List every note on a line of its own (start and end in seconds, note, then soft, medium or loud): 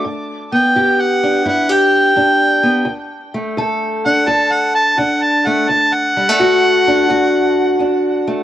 0.00 1.23 D4 medium
0.05 0.71 G2 medium
0.52 2.62 B3 medium
0.52 1.03 G5 medium
0.75 1.41 G2 medium
0.75 1.45 G4 medium
1.01 1.46 F#5 medium
1.23 2.16 D4 medium
1.45 2.12 G2 medium
1.45 1.69 E4 medium
1.45 1.74 F#5 medium
1.69 2.86 G4 medium
1.69 3.08 G5 medium
2.16 2.82 G2 medium
2.16 4.05 D4 medium
2.63 2.84 B3 medium
2.85 3.52 D2 medium
3.34 5.45 A3 medium
3.57 4.23 D2 medium
3.57 4.27 A4 medium
4.06 4.98 D4 medium
4.06 4.30 F#5 loud
4.27 4.93 D2 medium
4.27 5.65 A4 medium
4.27 4.53 A5 medium
4.52 4.74 F#5 loud
4.75 5.00 A5 medium
4.98 5.63 D2 medium
4.98 6.87 D4 medium
4.98 5.24 F#5 medium
5.23 5.48 A5 medium
5.46 5.66 A3 medium
5.46 5.71 F#5 medium
5.69 6.34 D2 medium
5.69 5.95 A5 medium
5.94 7.99 F#5 loud
6.17 6.29 G3 medium
6.29 8.26 A3 soft
6.39 7.04 D2 medium
6.39 7.09 F#4 medium
6.87 7.80 D4 medium
7.09 7.74 D2 medium
7.09 8.43 F#4 medium
7.79 8.43 D2 medium
7.79 8.43 D4 medium
8.27 8.43 A3 medium